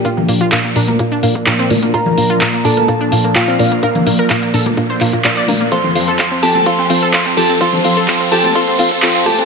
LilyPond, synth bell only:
\new Staff \with { instrumentName = "Synth bell" } { \time 4/4 \key bes \major \tempo 4 = 127 <g' g''>8 r2. r8 | <bes' bes''>4. <a' a''>4. <f' f''>4~ | <f' f''>8 r2. r8 | <c'' c'''>4. <a' a''>8 <c'' c'''>4. <a' a''>8 |
<c'' c'''>4. <a' a''>8 <c'' c'''>4. <a' a''>8 | }